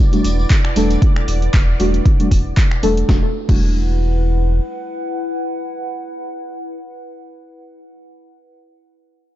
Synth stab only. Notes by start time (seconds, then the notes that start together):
0.13 G3 A3 D4 F#4
0.76 G3 A3 D4 A4
1.79 G3 A3 D4 F#4
2.20 G3 A3 D4 F#4
2.83 G3 A3 D4 A4
3.08 G3 A3 D4 F#4
3.48 G3 A3 D4 F#4